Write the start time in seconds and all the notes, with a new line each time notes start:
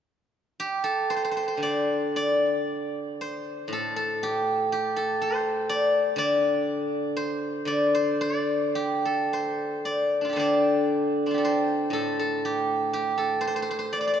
0.60 G4
0.84 A4
1.10 C5
1.16 C5
1.25 C5
1.31 C5
1.37 C5
1.48 C5
1.57 D3
1.63 D5
2.16 D5
3.21 C5
3.68 A2
3.73 A4
3.96 A4
4.23 G4
4.72 G4
4.96 A4
5.22 C5
5.69 D5
6.16 D3 D5
7.17 C5
7.65 D3 D5
7.95 C5
8.21 D5
8.75 G4
9.05 A4
9.33 C5
9.85 D5
10.21 D4 F4
10.29 G4 A4
10.36 D3 C5 D5
11.26 C4 D4
11.31 F4 G4
11.38 A4
11.45 C5
11.90 A2 A4
12.19 A4
12.45 G4
12.93 G4
13.18 A4
13.41 C5
13.47 C5
13.56 C5
13.62 C5
13.71 C5
13.79 C5
13.93 D5
14.01 D5
14.07 D5
14.13 D5